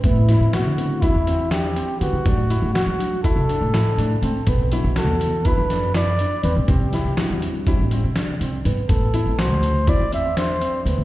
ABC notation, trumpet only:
X:1
M:9/8
L:1/8
Q:3/8=81
K:Ador
V:1 name="Trumpet"
E2 F2 E2 G2 F- | F2 F2 A4 z | z2 A2 B2 d2 B | G2 z6 z |
A2 c2 d e c2 z |]